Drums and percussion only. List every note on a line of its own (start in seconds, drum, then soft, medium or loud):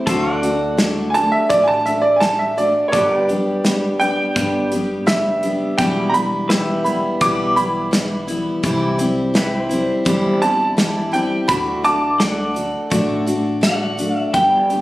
0.07 kick loud
0.07 closed hi-hat medium
0.43 closed hi-hat medium
0.79 snare loud
0.79 closed hi-hat medium
1.15 closed hi-hat medium
1.50 kick loud
1.50 closed hi-hat medium
1.86 closed hi-hat medium
2.21 snare loud
2.21 closed hi-hat medium
2.58 closed hi-hat medium
2.93 kick loud
2.93 closed hi-hat medium
3.29 closed hi-hat medium
3.65 snare loud
3.65 closed hi-hat medium
4.01 closed hi-hat medium
4.36 kick loud
4.36 closed hi-hat medium
4.72 closed hi-hat medium
5.08 snare loud
5.08 closed hi-hat medium
5.43 closed hi-hat medium
5.79 kick loud
5.79 closed hi-hat medium
6.14 closed hi-hat medium
6.50 snare loud
6.50 closed hi-hat medium
6.86 closed hi-hat medium
7.21 kick loud
7.21 closed hi-hat medium
7.57 closed hi-hat medium
7.93 snare loud
7.93 closed hi-hat medium
8.28 closed hi-hat medium
8.64 kick loud
8.64 closed hi-hat medium
8.99 closed hi-hat medium
9.35 snare loud
9.35 closed hi-hat medium
9.71 closed hi-hat medium
10.06 kick loud
10.06 closed hi-hat medium
10.42 closed hi-hat medium
10.78 snare loud
10.78 closed hi-hat medium
11.14 closed hi-hat medium
11.49 kick loud
11.49 closed hi-hat medium
11.85 closed hi-hat medium
12.20 snare loud
12.20 closed hi-hat medium
12.56 closed hi-hat medium
12.92 kick loud
12.92 closed hi-hat medium
13.27 closed hi-hat medium
13.63 snare loud
13.63 closed hi-hat loud
13.99 closed hi-hat medium
14.34 kick medium
14.34 closed hi-hat medium
14.70 closed hi-hat medium